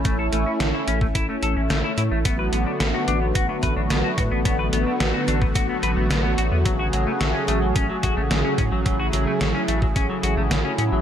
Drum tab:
HH |x-x-x-x-x-x-x-x-|x-x-x-x-x-x-x-x-|x-x-x-x-x-x-x-x-|x-x-x-x-x-x-x-x-|
SD |----o-------o---|----o-------o---|----o-------o---|----o-------o---|
BD |o------oo-------|o-------o-o---o-|o------oo-------|o-------o-o---o-|

HH |x-x-x-x-x-x-x-x-|
SD |----o-------o---|
BD |o------oo-------|